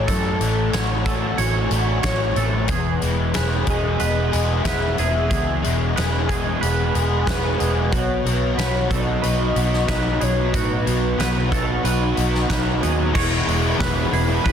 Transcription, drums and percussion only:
0.08 kick, closed hi-hat
0.41 closed hi-hat
0.73 snare, closed hi-hat
1.06 kick, closed hi-hat
1.38 closed hi-hat
1.71 closed hi-hat
2.03 kick, snare, closed hi-hat
2.36 closed hi-hat
2.68 kick, closed hi-hat
3.02 closed hi-hat
3.34 snare, closed hi-hat
3.67 kick, closed hi-hat
4.00 closed hi-hat
4.33 closed hi-hat
4.65 kick, snare, closed hi-hat
4.98 closed hi-hat
5.31 kick, closed hi-hat
5.64 closed hi-hat
5.97 snare, closed hi-hat
6.29 kick, closed hi-hat
6.63 closed hi-hat
6.95 closed hi-hat
7.27 kick, snare, closed hi-hat
7.60 closed hi-hat
7.93 kick, closed hi-hat
8.26 closed hi-hat
8.59 snare, closed hi-hat
8.91 kick, closed hi-hat
9.23 closed hi-hat
9.56 closed hi-hat
9.73 snare
9.88 kick, snare, closed hi-hat
10.21 closed hi-hat
10.54 kick, closed hi-hat
10.87 closed hi-hat
11.20 snare, closed hi-hat
11.52 kick, closed hi-hat
11.85 closed hi-hat
12.17 closed hi-hat
12.35 snare
12.50 kick, snare, closed hi-hat
12.83 closed hi-hat
13.15 kick, crash
13.49 open hi-hat
13.80 kick, snare, open hi-hat
14.13 open hi-hat
14.46 kick, open hi-hat

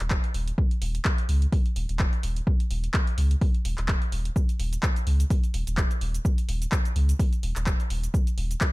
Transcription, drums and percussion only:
0.00 closed hi-hat
0.10 kick, clap
0.24 closed hi-hat
0.34 open hi-hat
0.48 closed hi-hat
0.58 kick
0.71 closed hi-hat
0.82 open hi-hat
0.95 closed hi-hat
1.05 kick, clap
1.18 closed hi-hat
1.29 open hi-hat
1.42 closed hi-hat
1.52 kick, open hi-hat
1.66 closed hi-hat
1.76 open hi-hat
1.89 closed hi-hat
1.99 kick, clap
2.13 closed hi-hat
2.23 open hi-hat
2.36 closed hi-hat
2.47 kick
2.60 closed hi-hat
2.71 open hi-hat
2.84 closed hi-hat
2.94 kick, clap
3.07 closed hi-hat
3.18 open hi-hat
3.31 closed hi-hat
3.41 kick, open hi-hat
3.55 closed hi-hat
3.65 open hi-hat
3.78 clap, closed hi-hat
3.88 kick, clap
4.02 closed hi-hat
4.12 open hi-hat
4.25 closed hi-hat
4.36 kick, shaker
4.49 closed hi-hat, shaker
4.60 open hi-hat
4.73 closed hi-hat, shaker
4.83 kick, clap, shaker
4.96 closed hi-hat, shaker
5.07 open hi-hat
5.20 closed hi-hat, shaker
5.30 kick, open hi-hat, shaker
5.44 closed hi-hat, shaker
5.54 open hi-hat
5.67 closed hi-hat, shaker
5.77 kick, clap, shaker
5.91 closed hi-hat, shaker
6.01 open hi-hat
6.14 closed hi-hat, shaker
6.25 kick, shaker
6.38 closed hi-hat, shaker
6.49 open hi-hat
6.62 closed hi-hat, shaker
6.72 kick, clap, shaker
6.85 closed hi-hat, shaker
6.96 open hi-hat
7.09 closed hi-hat, shaker
7.19 kick, open hi-hat, shaker
7.33 closed hi-hat, shaker
7.43 open hi-hat
7.56 clap, closed hi-hat, shaker
7.66 kick, clap, shaker
7.80 closed hi-hat, shaker
7.90 open hi-hat
8.03 closed hi-hat, shaker
8.14 kick, shaker
8.27 closed hi-hat, shaker
8.38 open hi-hat
8.51 closed hi-hat, shaker
8.61 kick, clap, shaker

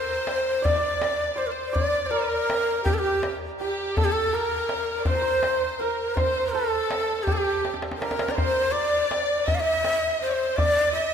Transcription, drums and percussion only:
0.27 tombak tek
0.65 tombak dum
1.02 tombak tek
1.39 tombak ka
1.76 tombak dum
2.13 tombak ka
2.50 tombak tek
2.86 tombak dum
3.23 tombak tek
3.60 tombak ka
3.97 tombak dum
4.34 tombak ka
4.69 tombak tek
5.05 tombak dum
5.43 tombak tek
5.80 tombak ka
6.17 tombak dum
6.53 tombak ka
6.91 tombak tek
7.27 tombak dum
7.65 tombak tek
7.74 tombak ka
7.82 tombak tek
7.91 tombak ka
8.02 tombak tek
8.11 tombak ka
8.19 tombak tek
8.28 tombak ka
8.38 tombak dum
8.75 tombak ka
9.11 tombak tek
9.48 tombak dum
9.85 tombak tek
10.21 tombak ka
10.58 tombak dum
10.96 tombak ka

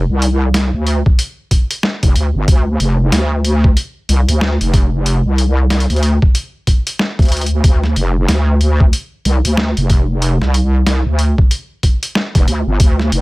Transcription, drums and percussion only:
0.22 closed hi-hat
0.54 snare, closed hi-hat
0.87 closed hi-hat
1.06 kick
1.19 closed hi-hat
1.51 kick, closed hi-hat
1.71 closed hi-hat
1.83 snare
2.03 kick, closed hi-hat
2.16 closed hi-hat
2.48 kick, closed hi-hat
2.80 closed hi-hat
3.12 snare, closed hi-hat
3.45 closed hi-hat
3.64 kick
3.77 closed hi-hat
4.09 closed hi-hat
4.29 closed hi-hat
4.41 snare
4.61 closed hi-hat
4.74 kick, closed hi-hat
5.06 closed hi-hat
5.38 closed hi-hat
5.70 snare, closed hi-hat
5.80 closed hi-hat
5.90 closed hi-hat
5.96 closed hi-hat
6.03 closed hi-hat
6.22 kick
6.35 closed hi-hat
6.67 kick, closed hi-hat
6.87 closed hi-hat
6.99 snare
7.19 kick, closed hi-hat
7.22 closed hi-hat
7.25 closed hi-hat
7.29 closed hi-hat
7.32 closed hi-hat
7.37 closed hi-hat
7.41 closed hi-hat
7.46 closed hi-hat
7.64 kick, closed hi-hat
7.84 snare
7.96 closed hi-hat
8.28 snare, closed hi-hat
8.61 closed hi-hat
8.80 kick
8.93 closed hi-hat
9.25 closed hi-hat
9.45 closed hi-hat
9.57 snare
9.77 closed hi-hat
9.90 kick, closed hi-hat
10.22 closed hi-hat
10.42 snare
10.54 closed hi-hat
10.87 snare, closed hi-hat
11.19 closed hi-hat
11.38 kick
11.51 closed hi-hat
11.83 kick, closed hi-hat
12.03 closed hi-hat
12.15 snare
12.35 kick, snare, closed hi-hat
12.48 closed hi-hat
12.80 kick, closed hi-hat
12.99 snare
13.12 closed hi-hat

